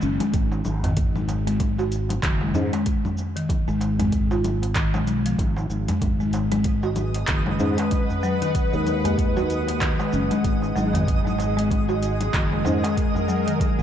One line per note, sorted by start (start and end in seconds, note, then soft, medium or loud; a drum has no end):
0.02 0.18 F#1 medium
0.02 0.19 C#4 medium
0.02 cabasa medium
0.20 0.28 G#3 loud
0.20 closed hi-hat soft
0.20 low conga medium
0.20 cabasa soft
0.33 0.61 G#1 loud
0.33 kick loud
0.33 closed hi-hat medium
0.33 cabasa soft
0.52 darbuka ka medium
0.52 cabasa soft
0.65 0.93 G#1 medium
0.65 low conga medium
0.65 cabasa medium
0.84 0.97 D#3 medium
0.84 closed hi-hat soft
0.84 darbuka ka medium
0.84 darbuka dum medium
0.84 cabasa soft
0.97 2.20 G#1 medium
0.97 kick loud
0.97 closed hi-hat medium
0.97 cabasa soft
1.16 1.28 G#3 medium
1.16 low conga medium
1.16 cabasa soft
1.28 closed hi-hat soft
1.28 darbuka tek medium
1.28 cabasa medium
1.47 1.55 G#3 loud
1.47 closed hi-hat soft
1.47 cabasa soft
1.60 kick medium
1.60 closed hi-hat medium
1.60 low conga medium
1.60 cabasa soft
1.78 2.22 F#4 medium
1.78 darbuka ka soft
1.78 darbuka tek medium
1.78 cabasa soft
1.92 closed hi-hat soft
1.92 cabasa medium
2.09 closed hi-hat soft
2.09 darbuka ka medium
2.09 low conga medium
2.09 cabasa soft
2.23 2.51 F#1 medium
2.23 2.41 D#3 medium
2.23 kick loud
2.23 clap medium
2.23 closed hi-hat medium
2.23 cabasa soft
2.41 2.54 G#3 medium
2.41 darbuka ka medium
2.54 2.71 G#2 medium
2.54 2.72 C#4 medium
2.54 darbuka tek medium
2.54 darbuka dum medium
2.54 low conga medium
2.54 cabasa medium
2.73 2.81 G#3 loud
2.73 closed hi-hat soft
2.73 darbuka ka medium
2.73 darbuka tek medium
2.73 cabasa soft
2.86 kick loud
2.86 closed hi-hat medium
2.86 cabasa soft
3.05 low conga medium
3.05 darbuka dum medium
3.05 cabasa soft
3.18 darbuka tek soft
3.18 cabasa medium
3.36 3.49 D#3 medium
3.36 closed hi-hat soft
3.36 cabasa soft
3.49 kick loud
3.49 closed hi-hat medium
3.49 low conga medium
3.49 cabasa soft
3.68 5.07 G#1 medium
3.68 3.80 G#3 medium
3.68 cabasa soft
3.81 closed hi-hat soft
3.81 darbuka tek medium
3.81 cabasa medium
3.99 4.07 G#3 loud
3.99 closed hi-hat soft
3.99 darbuka dum medium
3.99 low conga medium
3.99 cabasa soft
4.12 kick medium
4.12 closed hi-hat medium
4.12 cabasa soft
4.31 4.75 F4 medium
4.31 darbuka ka soft
4.31 darbuka tek medium
4.31 cabasa soft
4.44 closed hi-hat soft
4.44 low conga medium
4.44 cabasa medium
4.62 closed hi-hat soft
4.62 darbuka ka medium
4.62 cabasa soft
4.75 4.93 D#3 medium
4.75 kick loud
4.75 clap medium
4.75 closed hi-hat medium
4.75 cabasa soft
4.94 5.06 G#3 medium
4.94 darbuka tek medium
4.94 low conga medium
4.94 cabasa soft
5.07 5.35 B1 loud
5.07 5.25 G#3 medium
5.07 closed hi-hat soft
5.07 cabasa medium
5.26 5.38 F3 medium
5.26 closed hi-hat soft
5.26 cabasa soft
5.39 5.67 G#1 loud
5.39 kick loud
5.39 closed hi-hat medium
5.39 low conga medium
5.39 cabasa soft
5.57 darbuka ka medium
5.57 cabasa soft
5.70 5.86 G#1 medium
5.70 darbuka tek soft
5.70 cabasa medium
5.88 6.01 G#3 medium
5.88 closed hi-hat soft
5.88 darbuka ka medium
5.88 low conga medium
5.88 darbuka dum medium
5.88 cabasa soft
6.01 7.25 G#1 medium
6.01 13.83 G#3 medium
6.01 13.83 D#5 medium
6.01 kick loud
6.01 closed hi-hat medium
6.01 low conga medium
6.01 cabasa soft
6.12 13.83 G#4 medium
6.20 6.33 G#3 medium
6.20 cabasa soft
6.33 closed hi-hat soft
6.33 darbuka tek medium
6.33 cabasa medium
6.52 6.60 G#3 loud
6.52 11.08 B4 medium
6.52 closed hi-hat soft
6.52 low conga medium
6.52 cabasa soft
6.64 kick loud
6.64 closed hi-hat medium
6.64 cabasa soft
6.83 7.27 F#4 medium
6.83 darbuka ka soft
6.83 darbuka tek medium
6.83 cabasa soft
6.96 closed hi-hat soft
6.96 low conga medium
6.96 cabasa medium
7.14 13.60 F#5 medium
7.14 closed hi-hat soft
7.14 darbuka ka medium
7.14 cabasa soft
7.28 7.56 F#1 medium
7.28 7.46 D#3 medium
7.28 kick loud
7.28 clap medium
7.28 closed hi-hat medium
7.28 cabasa soft
7.46 7.59 G#3 medium
7.46 darbuka ka medium
7.46 low conga medium
7.59 7.76 G#2 medium
7.59 7.76 C#4 medium
7.59 darbuka tek medium
7.59 darbuka dum medium
7.59 cabasa medium
7.77 7.86 G#3 loud
7.77 closed hi-hat soft
7.77 darbuka ka medium
7.77 darbuka tek medium
7.77 cabasa soft
7.91 kick loud
7.91 closed hi-hat medium
7.91 low conga medium
7.91 cabasa soft
8.10 darbuka dum medium
8.10 cabasa soft
8.23 8.41 F#3 loud
8.23 darbuka tek soft
8.23 cabasa medium
8.41 8.71 D#3 medium
8.41 closed hi-hat soft
8.41 low conga medium
8.41 cabasa soft
8.55 kick loud
8.55 closed hi-hat medium
8.55 cabasa soft
8.73 9.95 D#2 medium
8.73 8.86 G#3 medium
8.73 cabasa soft
8.87 closed hi-hat soft
8.87 low conga medium
8.87 cabasa medium
9.05 9.13 G#3 loud
9.05 closed hi-hat soft
9.05 darbuka dum medium
9.05 cabasa soft
9.18 kick loud
9.18 closed hi-hat medium
9.18 cabasa soft
9.36 9.80 F#4 medium
9.36 darbuka ka soft
9.36 darbuka tek medium
9.36 low conga medium
9.36 cabasa soft
9.50 closed hi-hat soft
9.50 cabasa medium
9.67 closed hi-hat soft
9.67 darbuka ka medium
9.67 cabasa soft
9.81 9.99 D#3 medium
9.81 kick loud
9.81 clap medium
9.81 closed hi-hat medium
9.81 low conga medium
9.81 cabasa soft
10.00 10.12 G#3 medium
10.00 darbuka tek medium
10.00 cabasa soft
10.13 10.29 F#1 medium
10.13 10.30 C#4 medium
10.13 cabasa medium
10.31 10.39 G#3 loud
10.31 closed hi-hat soft
10.31 low conga medium
10.31 cabasa soft
10.44 10.72 G#1 loud
10.44 kick loud
10.44 closed hi-hat medium
10.44 cabasa soft
10.62 darbuka ka medium
10.62 cabasa soft
10.76 11.04 G#1 medium
10.76 10.93 F#3 loud
10.76 low conga medium
10.76 cabasa medium
10.93 11.07 D#3 medium
10.93 closed hi-hat soft
10.93 darbuka ka medium
10.93 darbuka dum loud
10.93 cabasa soft
11.08 12.31 G#1 medium
11.08 kick loud
11.08 closed hi-hat medium
11.08 cabasa soft
11.25 11.38 G#3 medium
11.25 low conga medium
11.25 cabasa soft
11.38 closed hi-hat soft
11.38 darbuka tek medium
11.38 cabasa medium
11.57 11.65 G#3 loud
11.57 closed hi-hat soft
11.57 cabasa soft
11.71 kick loud
11.71 closed hi-hat soft
11.71 low conga medium
11.71 cabasa soft
11.89 12.32 F#4 medium
11.89 darbuka ka soft
11.89 darbuka tek medium
11.89 cabasa soft
12.03 closed hi-hat soft
12.03 cabasa medium
12.21 13.83 A#4 medium
12.21 closed hi-hat soft
12.21 darbuka ka soft
12.21 low conga medium
12.21 cabasa soft
12.33 12.62 F#1 medium
12.33 12.51 D#3 medium
12.33 kick loud
12.33 clap medium
12.33 closed hi-hat medium
12.33 cabasa soft
12.52 12.65 G#3 medium
12.52 darbuka ka medium
12.65 12.81 G#2 medium
12.65 12.82 C#4 medium
12.65 darbuka tek medium
12.65 darbuka dum medium
12.65 low conga medium
12.65 cabasa medium
12.83 12.91 G#3 loud
12.83 closed hi-hat soft
12.83 darbuka ka medium
12.83 darbuka tek medium
12.83 cabasa soft
12.97 kick loud
12.97 closed hi-hat medium
12.97 cabasa soft
13.15 darbuka dum medium
13.15 low conga medium
13.15 cabasa soft
13.28 13.46 F#3 loud
13.28 darbuka tek soft
13.28 cabasa medium
13.47 13.60 D#3 medium
13.47 closed hi-hat soft
13.47 cabasa soft
13.60 kick loud
13.60 closed hi-hat medium
13.60 low conga medium
13.60 cabasa soft
13.79 13.83 G#1 medium
13.79 13.83 G#3 medium
13.79 cabasa soft